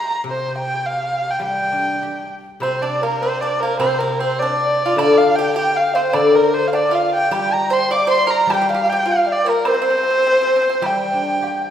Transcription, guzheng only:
0.24 C3
1.39 G3
1.72 D4
2.03 G4
2.60 C3
3.79 C3
4.96 D3
6.13 D3
7.31 G3
8.47 G3
10.82 G3
11.13 D4
11.42 G4

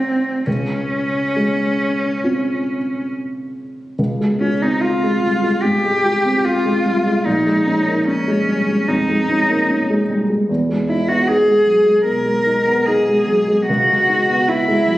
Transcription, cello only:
Already playing: C4
0.46 C#4
4.41 C#4
4.62 D#4
4.82 F4
5.62 G4
6.44 F4
7.25 D#4
8.09 C#4
8.88 D#4
10.89 E4
11.09 F#4
11.27 G#4
12.06 A#4
12.86 G#4
13.68 F#4
14.49 E4

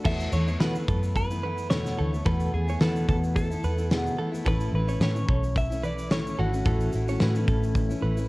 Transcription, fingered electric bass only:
0.05 E2
0.33 E2
0.60 E3
0.88 F#2
1.99 D2
2.26 E2
2.54 E2
2.81 E3
3.09 E2
3.64 E2
4.46 A1
4.72 A1
5.00 A2
5.29 B1
6.39 G#1
6.66 A1
6.94 A1
7.22 A2
7.48 A1
8.03 A1

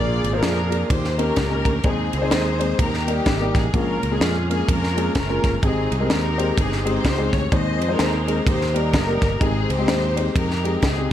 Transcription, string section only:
Already playing: F4 G#4 D5
0.33 D4 F4 A#4
0.90 G4 C5
1.19 C#4 G4 A#4
1.85 C4 D#4 G#4
2.14 D#4 G#4 C5
2.80 D#4 G4 A#4
3.08 A#3 D#4 G4
3.57 G#4
3.74 C#4 F4 A#4
4.13 C#4 F4 G#4
4.51 G#4
4.69 C#4 F4 A#4
5.16 C#4 F4 A#4
5.64 C4 D#4 G#4
6.11 D#4 G4 A#4
6.59 C4 D#4 G#4
6.87 D#4 G4 C5
7.34 C#5
7.53 G#4 C5 D#5
7.91 D#4 A#4
8.47 D#4 G4 C5
8.76 D#4 G4 A#4
9.42 C4 D#4 G#4
9.70 D#4 G4 C5
10.36 D#4 G4 A#4
10.84 C4 D#4 G#4

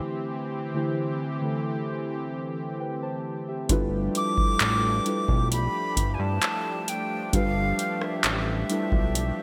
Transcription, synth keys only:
Already playing: D3 A3 E4 G4 C5
0.74 D3 A3 E4 G4 C5
1.42 D3 A3 E4 G4 A4
2.80 B4 G5
3.02 C5 A5
3.48 G4 E5
3.69 G3 D4 E4 F4 A4 B4
5.05 G3 D4 E4 F4 A4 B4
7.33 G3 D4 F4 G4 A4 B4
8.69 G3 D4 E4 F4 A4 B4

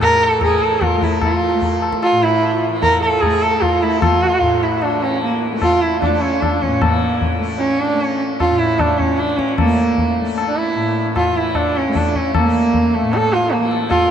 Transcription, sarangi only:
0.02 A#4
0.24 A4
0.44 G#4
0.63 A4
0.83 F4
1.03 E4
1.23 F4
2.03 F4
2.23 E4
2.82 A#4
3.02 A4
3.21 G#4
3.42 A4
3.62 F4
3.82 E4
4.02 F4
4.62 E4
4.83 D4
5.03 C#4
5.23 A#3
5.63 F4
5.81 E4
6.02 D4
6.21 C#4
6.41 D4
6.62 C#4
6.81 A#3
7.58 C#4
7.80 D4
8.03 C#4
8.40 F4
8.58 E4
8.80 D4
8.98 C#4
9.19 D4
9.37 C#4
9.59 A#3
10.48 D4
10.56 E4
11.16 F4
11.37 E4
11.56 D4
11.78 C#4
11.97 D4
12.16 C#4
12.36 A#3
12.94 A3
13.14 A4
13.33 F4
13.51 A#3
13.89 F4

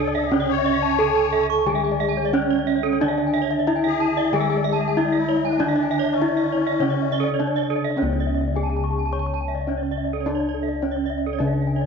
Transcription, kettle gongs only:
Already playing: C#2
0.32 C#4
0.99 D4
1.66 D3
2.33 D4
3.00 D4
3.68 D4
4.32 D3
4.97 D4
5.59 D4
6.20 D4
6.80 C#3
7.40 D4
7.97 C#4
8.02 C#2
8.54 D4
9.69 D4
10.26 D4
10.83 D4
11.40 C#3

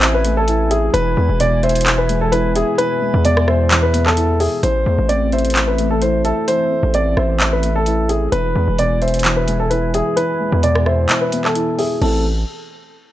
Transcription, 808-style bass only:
Already playing: A1
0.94 E1
1.17 E2
1.29 E1
3.14 E2
4.63 A1
4.86 E2
4.98 A1
6.83 A1
7.17 A1
8.32 E1
8.56 E2
8.68 E1
10.52 E2
12.02 A1

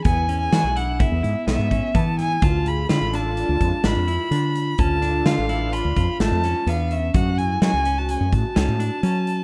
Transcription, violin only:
0.04 G#5
0.40 G#5
0.77 F#5
1.00 E5
1.47 E5
1.95 A5
2.19 G#5
2.44 A5
2.67 B5
2.91 B5
3.15 A5
3.85 B5
4.79 A5
5.26 F5
5.73 B5
6.22 A5
6.69 F5
6.91 E5
7.16 F#5
7.38 G#5
7.62 G#5
7.98 A5
8.10 G#5
8.34 A5

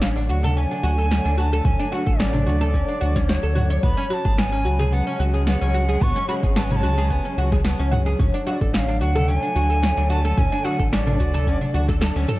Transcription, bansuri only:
0.03 F5
0.30 F#5
0.57 G#5
1.39 A5
1.66 G#5
1.93 F#5
2.19 D5
3.28 C#5
3.83 B5
4.10 A5 B5
4.39 G#5
4.92 F#5
5.48 F#5
6.02 C#6
6.29 B5
6.56 A5
6.64 G#5
6.71 B5
6.76 A5
7.12 G#5
8.48 F5
8.53 D5
8.74 F5
9.01 F#5
9.29 G#5
10.11 A5
10.38 G#5
10.65 F#5
10.92 D5

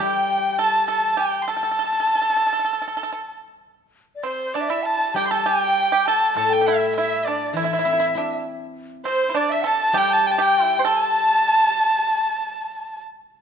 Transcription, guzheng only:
Already playing: E3
0.00 G3
5.14 G3
6.35 A2
7.53 E3
7.85 C4
8.15 E4
9.93 G3

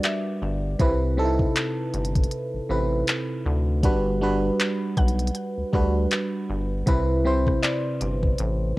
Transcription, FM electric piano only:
Already playing: G3 D4 F#4 A#4 B4 D5
0.79 C3 C4 E4 B4
1.17 C3 C4 D#4 A4
1.25 E4
2.69 C3 C4 E4 B4
3.83 G3 D4 F#4 B4
4.21 G3 D4 F#4 B4
5.73 G3 D4 F#4 B4
6.86 C3 C4 E4 B4
7.25 C3 C4 E4 C5

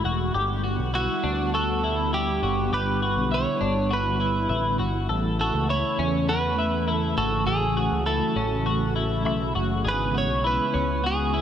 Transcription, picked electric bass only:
0.04 E1
0.34 G1
0.79 B1
1.24 D2
2.43 F#1
2.72 G1
3.17 B1
3.61 G1
4.49 A1
4.79 G1
5.09 A1
5.54 C#2
5.99 E2
7.18 G#1
7.47 A1
7.91 C#2
8.36 A1
9.26 B1
9.55 F#1
9.85 G#1
10.30 B1
10.75 C#2

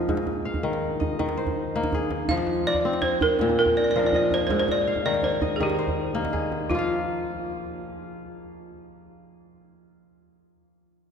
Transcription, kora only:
Already playing: A#2 F3 C4 A#4 D#5 G5
0.09 G#2
0.45 F5
0.63 D#3
1.00 D#5
1.19 D#3
1.37 C5
1.75 A#3 D#4
1.94 G#4
2.31 F3
2.68 D5
2.85 C4
3.22 C5
3.41 A#2
3.60 G5
3.96 F3 A#4
4.14 D#5
4.50 G#2
4.87 F5
5.05 D#3
5.42 D#5
5.61 D#3
5.79 C5
6.15 A#3 D#4
6.33 G#4
6.71 F3
6.75 F4 F5

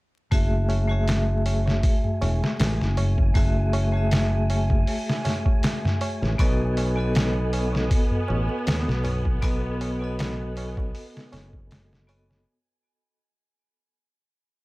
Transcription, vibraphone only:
0.31 A3 F#4 G#4 E5
0.88 A3 F#4 G#4
0.92 E5
3.34 A3 F#4 G#4 E5
3.92 A3 F#4 G#4
3.97 E5
6.38 B3 F#4 A4 D#5
6.96 B3 F#4 A4
7.00 D#5
9.42 B3 F#4 A4 D#5
9.99 B3 F#4 A4
10.04 D#5
12.07 B3 F#4 A4 D#5

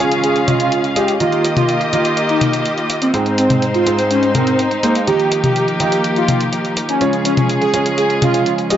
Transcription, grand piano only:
0.00 C#3 G#3 C#4 F4 C#5
0.48 C#3 G#3 C#4 F4 D#5
0.96 G#3 C#4 F4 D#5
1.20 D#3 A#3 F4 G4 D#5
1.93 D#3 A#3 F4 G4 D#5
3.14 G#2 G#3 C4 D#4 C5
3.86 G#2 G#3 C4 D#4 C5
4.35 G#2 G#3 C4 D#4 A#4
4.83 G#3 C4 D#4 C5
5.07 D#3 A#3 F4 G4 D#5
5.80 D#3 A#3 F4 G4 D#5
7.01 C#3 G#3 C#4 F4 C#5
7.74 C#3 G#3 C#4 F4 C#5
8.22 C#3 G#3 C#4 F4 D#5
8.70 G#3 C#4 F4 D#5

